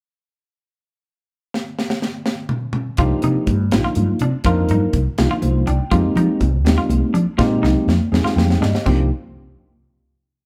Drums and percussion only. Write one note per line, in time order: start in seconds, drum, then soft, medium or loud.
1.54 snare medium
1.79 snare medium
1.90 snare medium
2.02 snare medium
2.26 snare medium
2.49 mid tom medium
2.73 mid tom medium
2.97 kick loud
2.97 closed hi-hat medium
2.97 high conga medium
3.11 low conga soft
3.22 closed hi-hat medium
3.22 low conga medium
3.46 kick medium
3.46 closed hi-hat medium
3.46 high conga medium
3.60 low conga soft
3.72 snare loud
3.72 closed hi-hat medium
3.72 low conga soft
3.95 closed hi-hat medium
3.95 high conga medium
3.95 low conga medium
4.08 low conga soft
4.19 closed hi-hat medium
4.44 kick loud
4.44 closed hi-hat medium
4.44 high conga medium
4.57 low conga soft
4.69 closed hi-hat medium
4.69 low conga medium
4.93 kick medium
4.93 closed hi-hat medium
4.93 high conga medium
5.05 low conga soft
5.18 snare loud
5.18 closed hi-hat medium
5.18 low conga soft
5.42 closed hi-hat medium
5.42 high conga medium
5.42 low conga medium
5.55 low conga soft
5.67 closed hi-hat medium
5.67 low conga soft
5.91 kick loud
5.91 closed hi-hat medium
5.91 high conga medium
6.16 closed hi-hat medium
6.16 low conga medium
6.40 kick medium
6.40 closed hi-hat medium
6.40 high conga medium
6.53 low conga soft
6.65 snare loud
6.65 closed hi-hat medium
6.65 low conga soft
6.90 closed hi-hat medium
6.90 high conga loud
6.90 low conga medium
7.03 low conga soft
7.15 closed hi-hat medium
7.39 kick loud
7.39 snare medium
7.39 high conga loud
7.63 snare medium
7.63 low conga loud
7.88 snare medium
7.88 high conga loud
8.13 snare medium
8.13 low conga soft
8.26 snare medium
8.26 low conga soft
8.38 snare medium
8.38 high conga loud
8.38 low conga medium
8.50 snare medium
8.50 low conga soft
8.63 snare medium
8.75 snare medium
8.86 kick medium
8.86 crash medium
8.86 high conga medium